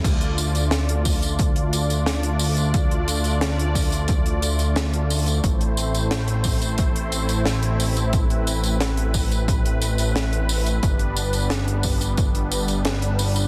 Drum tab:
CC |x---------------|----------------|----------------|----------------|
HH |xxxxxxoxxxxxxxox|xxxxxxoxxxxxxxox|xxxxxxoxxxxxxxox|xxxxxxoxxxxxxxox|
TB |x-xxx-xxx-xxx-xx|x-xxx-xxx-xxx-xx|x-xxx-xxx-xxx-xx|x-xxx-xxx-xxx-xx|
SD |----o-------o---|----o-------o---|----o-------o---|----o-------o---|
BD |o-----o-o-------|o-----o-o-------|o-----o-o-------|o-----o-o-------|

CC |----------------|
HH |xxxxxxoxxxxxxxox|
TB |x-xx--xxx-xxx-xx|
SD |----o-------o---|
BD |o-----o-o-------|